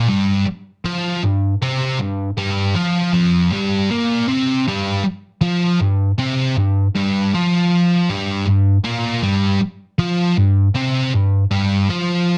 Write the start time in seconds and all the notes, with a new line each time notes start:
0.08 G2 G3
0.46 muted distorted electric guitar stroke
0.84 F3 F4
1.22 G2
1.62 C3 C4
1.99 G2
2.37 G2 G3
2.75 F3 F4
3.12 F2 F3
3.51 G2 G3
3.89 A#2 A#3
4.28 C3 C4
4.67 G2 G3
5.04 muted distorted electric guitar stroke
5.41 F3 F4
5.80 G2
6.18 C3 C4
6.57 G2
6.95 G2 G3
7.34 F3 F4
8.09 G2 G3
8.46 G2
8.84 A#2 A#3
9.22 G2 G3
9.60 muted distorted electric guitar stroke
9.98 F3 F4
10.37 G2
10.75 C3 C4
11.14 G2
11.51 G2 G3
11.89 F3 F4